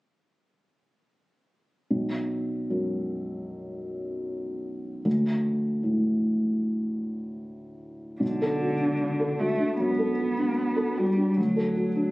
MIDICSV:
0, 0, Header, 1, 3, 480
1, 0, Start_track
1, 0, Key_signature, 2, "minor"
1, 0, Tempo, 785340
1, 1170, Time_signature, 4, 2, 24, 8
1, 4042, Tempo, 793651
1, 7368, End_track
2, 0, Start_track
2, 0, Title_t, "Felt piano"
2, 0, Program_c, 0, 0
2, 1164, Note_on_c, 0, 35, 36
2, 1266, Control_c, 0, 64, 127
2, 1652, Note_on_c, 0, 42, 26
2, 3062, Note_off_c, 0, 35, 0
2, 3087, Note_on_c, 0, 38, 44
2, 3088, Note_off_c, 0, 42, 0
2, 3102, Control_c, 0, 64, 0
2, 3202, Control_c, 0, 64, 127
2, 3563, Note_on_c, 0, 45, 32
2, 4986, Note_off_c, 0, 38, 0
2, 5002, Note_on_c, 0, 35, 37
2, 5011, Note_off_c, 0, 45, 0
2, 5022, Control_c, 0, 64, 0
2, 5120, Control_c, 0, 64, 127
2, 5133, Note_on_c, 0, 69, 30
2, 5247, Note_on_c, 0, 66, 31
2, 5325, Note_off_c, 0, 69, 0
2, 5369, Note_on_c, 0, 62, 30
2, 5442, Note_off_c, 0, 66, 0
2, 5606, Note_on_c, 0, 69, 27
2, 5721, Note_on_c, 0, 66, 28
2, 5754, Note_off_c, 0, 62, 0
2, 5800, Note_off_c, 0, 69, 0
2, 5840, Note_on_c, 0, 62, 28
2, 5917, Note_off_c, 0, 66, 0
2, 5941, Note_off_c, 0, 35, 0
2, 5969, Note_on_c, 0, 42, 30
2, 6036, Note_off_c, 0, 62, 0
2, 6085, Note_on_c, 0, 69, 30
2, 6160, Note_off_c, 0, 42, 0
2, 6202, Note_on_c, 0, 66, 32
2, 6277, Note_off_c, 0, 69, 0
2, 6320, Note_on_c, 0, 62, 31
2, 6395, Note_off_c, 0, 66, 0
2, 6552, Note_on_c, 0, 69, 33
2, 6680, Note_on_c, 0, 66, 33
2, 6704, Note_off_c, 0, 62, 0
2, 6749, Note_off_c, 0, 69, 0
2, 6795, Note_on_c, 0, 62, 31
2, 6873, Note_off_c, 0, 66, 0
2, 6919, Note_off_c, 0, 62, 0
2, 6922, Note_on_c, 0, 38, 40
2, 6933, Control_c, 0, 64, 0
2, 7037, Control_c, 0, 64, 127
2, 7037, Note_on_c, 0, 69, 31
2, 7153, Note_on_c, 0, 66, 33
2, 7230, Note_off_c, 0, 69, 0
2, 7272, Note_on_c, 0, 62, 28
2, 7348, Note_off_c, 0, 66, 0
2, 7368, Note_off_c, 0, 38, 0
2, 7368, Note_off_c, 0, 62, 0
2, 7368, End_track
3, 0, Start_track
3, 0, Title_t, "Cello"
3, 0, Program_c, 1, 42
3, 5009, Note_on_c, 1, 50, 57
3, 5726, Note_on_c, 1, 57, 47
3, 5736, Note_off_c, 1, 50, 0
3, 5963, Note_off_c, 1, 57, 0
3, 5967, Note_on_c, 1, 59, 56
3, 6682, Note_on_c, 1, 55, 53
3, 6691, Note_off_c, 1, 59, 0
3, 6919, Note_on_c, 1, 54, 47
3, 6928, Note_off_c, 1, 55, 0
3, 7368, Note_off_c, 1, 54, 0
3, 7368, End_track
0, 0, End_of_file